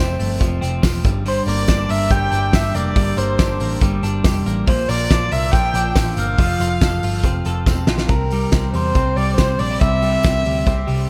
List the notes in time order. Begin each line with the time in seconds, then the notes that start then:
Already playing: F2 F3 A3 C4 C5
0.00 F1
0.19 G1 A3, hi-hat pedal, open hi-hat, tambourine
0.40 F1 F3, kick, hi-hat pedal, open hi-hat, tambourine
0.61 F1 C4, hi-hat pedal, open hi-hat
0.83 E1 F3, kick, snare, hi-hat pedal, open hi-hat, tambourine
1.04 G1 G2, kick, hi-hat pedal, open hi-hat, tambourine
1.26 G2 C5 C6, hi-hat pedal, open hi-hat, tambourine
1.46 G1 A#3 D5 D6, hi-hat pedal, open hi-hat, tambourine
1.68 G1 D4, kick, snare, hi-hat pedal, open hi-hat, tambourine
1.89 G1 A#3 E5 E6, hi-hat pedal, open hi-hat, tambourine
2.10 G1 G3 G5 G6, kick, hi-hat pedal, open hi-hat, tambourine
2.31 G1 D4, hi-hat pedal, open hi-hat
2.52 G1 G3 E5 E6, kick, snare, hi-hat pedal, open hi-hat, tambourine
2.74 F1 A#3 D5 D6, hi-hat pedal, open hi-hat, tambourine
2.96 G1 G2, kick, hi-hat pedal, open hi-hat, tambourine
3.17 G1 A#3 C5 C6, hi-hat pedal, open hi-hat, tambourine
3.38 G1 D4, kick, snare, hi-hat pedal, open hi-hat, tambourine
3.60 A1 A#3, hi-hat pedal, open hi-hat, tambourine
3.81 G1 G3, kick, hi-hat pedal, open hi-hat, tambourine
4.03 G1 D4, hi-hat pedal, open hi-hat, tambourine
4.24 F1 G3, kick, snare, hi-hat pedal, open hi-hat, tambourine
4.46 A1 A#3, hi-hat pedal, open hi-hat, tambourine
4.67 A#1 A#2 C5 C6, kick, hi-hat pedal, open hi-hat, tambourine
4.88 A#1 A#3 D5 D6, hi-hat pedal, open hi-hat, tambourine
5.10 A#1 D4, kick, snare, hi-hat pedal, open hi-hat, tambourine
5.31 C2 A#3 E5 E6, hi-hat pedal, open hi-hat, tambourine
5.52 A#1 F3 G5 G6, kick, hi-hat pedal, open hi-hat, tambourine
5.74 A#1 D4, hi-hat pedal, open hi-hat
5.96 A1 F3, kick, snare, hi-hat pedal, open hi-hat, tambourine
6.17 G1 A#3 F5 F6, hi-hat pedal, open hi-hat, tambourine
6.38 F1 F3, kick, hi-hat pedal, open hi-hat, tambourine
6.60 F1 F4, hi-hat pedal, open hi-hat, tambourine
6.81 F1 A4, kick, snare, hi-hat pedal, open hi-hat, tambourine
7.03 G1 F4, hi-hat pedal, open hi-hat, tambourine
7.23 F1 C4, kick, hi-hat pedal, open hi-hat, tambourine
7.45 F1 A4, hi-hat pedal, open hi-hat, tambourine
7.66 E1 C4, kick, snare, tambourine
7.87 A#1 F4, snare, tambourine
7.98 snare
8.08 C2 C3 A#4 A#5, kick, closed hi-hat, tambourine
8.30 G3, open hi-hat, tambourine
8.52 C2 C4, kick, snare, closed hi-hat, tambourine
8.74 E2 G3 C5 C6, open hi-hat, tambourine
8.95 C2 C4, kick, closed hi-hat, tambourine
9.16 C2 G3 D5 D6, open hi-hat, tambourine
9.37 C2 C4 C5 C6, kick, snare, closed hi-hat, tambourine
9.59 A#1 D4 D5 D6, open hi-hat, tambourine
9.71 E4
9.80 C2 C3 E5 E6, kick, closed hi-hat, tambourine
10.02 G3, open hi-hat, tambourine
10.23 C2 C4, kick, snare, closed hi-hat, tambourine
10.45 D2 G3, open hi-hat, tambourine
10.66 C2 C4, kick, closed hi-hat, tambourine
10.87 C2 G3, open hi-hat, tambourine